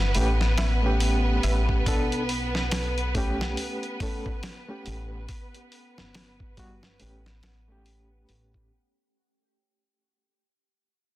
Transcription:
Already playing: G1 B3 B4
0.15 A1 A3 C#4 G4, open hi-hat, tabla na
0.40 snare, tabla na
0.58 snare, open hi-hat, tabla na
0.82 A3 C#4, tabla na
0.86 G4
1.00 open hi-hat, tabla na
1.27 tabla na
1.43 A1, open hi-hat, tabla na
1.69 kick, tabla na
1.86 B1 B3 D4 A4, kick, open hi-hat
2.12 closed hi-hat
2.29 open hi-hat
2.55 snare
2.71 snare, open hi-hat
2.98 closed hi-hat
3.15 A3 C#4 G4, kick, open hi-hat
3.41 snare
3.57 open hi-hat
3.83 closed hi-hat
4.00 A3 C#4 A4, kick, open hi-hat
4.26 kick
4.43 snare, open hi-hat
4.68 A3 C#4 G4
4.86 A1, open hi-hat
5.29 kick, open hi-hat
5.54 closed hi-hat
5.72 open hi-hat
5.98 G1, snare
6.15 snare, open hi-hat
6.40 kick
6.57 G3 B3 F#4, kick, open hi-hat
6.83 snare
7.00 A1 A3 C#4 G4, open hi-hat
7.26 snare
7.43 snare, open hi-hat
7.68 A3 C#4 G4
7.86 open hi-hat
8.29 A1, open hi-hat
8.54 kick

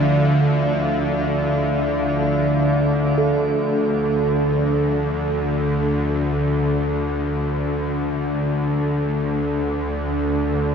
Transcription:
Already playing: D2 D3 F3 D5 E5 F5
3.18 D2 D3 A4

